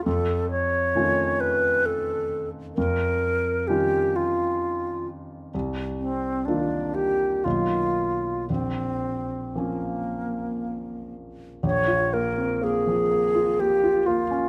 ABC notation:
X:1
M:3/4
L:1/16
Q:1/4=63
K:Bbdor
V:1 name="Alto flute"
=A2 ^c4 _c2 A2 z2 | B4 G2 F4 z2 | z2 C2 =D2 G2 F4 | C4 B,6 z2 |
d2 B2 A4 G2 F2 |]
V:2 name="Grand piano"
F,,4 [E,=A,^CF]8 | F,,4 [E,G,DF]8 | C,,4 [E,B,=DF]4 [=B,,,^D,^A,^D]4 | B,,,4 [F,B,CD]8 |
B,,, F B, C B, F, B, F B, F B, D |]